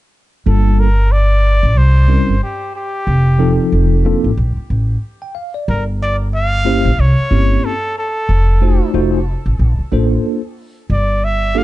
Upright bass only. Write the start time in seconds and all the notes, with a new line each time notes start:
0.46 G1
1.63 A1
1.76 C2
2.28 G1
3.07 F1
3.72 F1
4.24 A1
4.37 A#1
4.57 muted upright bass stroke
4.70 A1
5.68 G1
6.85 A1
6.98 C2
7.31 G1
8.29 F1
8.94 F1
9.46 A1
9.59 A#1
9.79 muted upright bass stroke
9.92 A1
10.90 G1